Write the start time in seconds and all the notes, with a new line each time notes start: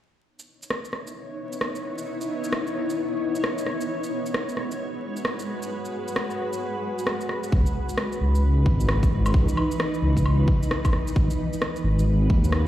0.24 B3 D#4 E4 C#5
0.39 shaker
0.62 shaker
0.70 cross-stick
0.85 shaker
0.93 cross-stick
1.07 shaker
1.53 shaker
1.61 cross-stick
1.75 shaker
1.98 shaker
2.21 shaker
2.44 shaker
2.52 cross-stick
2.67 shaker
2.90 shaker
3.35 shaker
3.44 cross-stick
3.58 shaker
3.66 cross-stick
3.81 shaker
3.89 G#3 F#4 B4
4.04 shaker
4.26 shaker
4.34 cross-stick
4.49 shaker
4.57 cross-stick
4.71 shaker
5.17 shaker
5.25 cross-stick
5.39 shaker
5.62 shaker
5.85 shaker
6.08 shaker
6.16 cross-stick
6.30 shaker
6.53 shaker
6.99 shaker
7.07 cross-stick
7.21 shaker
7.29 cross-stick
7.44 shaker
7.52 C#2 E3 D#4 B4, kick
7.66 shaker
7.89 shaker
7.97 cross-stick
8.12 shaker
8.21 C#2
8.35 shaker
8.66 G#1, kick
8.80 shaker
8.89 cross-stick
9.03 kick, shaker
9.26 low woodblock, shaker
9.34 C#2, kick
9.48 shaker
9.57 low woodblock
9.71 shaker
9.80 cross-stick
9.94 shaker
10.02 C#2
10.17 kick, shaker
10.26 low woodblock
10.48 kick
10.63 shaker
10.71 cross-stick
10.85 kick, low woodblock, shaker
10.93 cross-stick
11.07 shaker
11.16 G#1 G#3 B4, kick
11.30 shaker
11.53 shaker
11.62 cross-stick
11.76 shaker
11.84 G#1
11.99 shaker
12.30 D#2, kick
12.44 shaker
12.52 cross-stick